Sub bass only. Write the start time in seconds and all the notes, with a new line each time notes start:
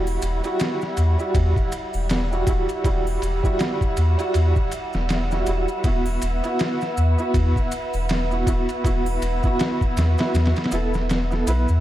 Already playing: E1
0.22 E1
0.97 E2
1.34 E2
1.94 E1
2.47 E1
2.84 E1
3.22 E1
3.97 E2
4.35 E2
4.94 E1
5.47 E1
5.84 E1
6.22 E1
6.97 E2
7.34 E2
7.94 E1
8.47 E1
8.84 E1
9.21 E1
9.97 E2
10.34 E2
10.72 E1
11.47 B1
11.69 E2